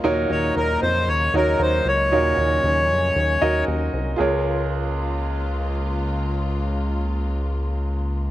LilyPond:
<<
  \new Staff \with { instrumentName = "Accordion" } { \time 4/4 \key des \major \tempo 4 = 115 r8 des''8 bes'8 c''8 des''8 bes'8 c''8 des''8~ | des''2. r4 | r1 | r1 | }
  \new Staff \with { instrumentName = "Grand piano" } { \time 4/4 \key des \major <ees' ges' bes' des''>2 r8 <ees' ges' bes' des''>4. | <ees' ges' bes' des''>2 r8 <ees' ges' bes' ees''>4. | <f' aes' bes' des''>1~ | <f' aes' bes' des''>1 | }
  \new Staff \with { instrumentName = "Grand piano" } { \clef bass \time 4/4 \key des \major bes,4. r2 r8 | bes,4. r2 r8 | des,1~ | des,1 | }
  \new Staff \with { instrumentName = "String section" } { \time 4/4 \key des \major << { ees'1 | des'1 | <des aes bes f'>1~ | <des aes bes f'>1 | } \\ { <des ges bes>1~ | <des ges bes>1 | r1 | r1 | } >> }
  \new Staff \with { instrumentName = "Analog synth bass" } { \clef bass \time 4/4 \key des \major ees,8 ees,8 ees,8 f,8 ees,8 ees,8 ees,8 des,8 | ees,8 ees,8 ees,8 f,8 ees,8 ees,8 ees,8 c,8 | des,1~ | des,1 | }
>>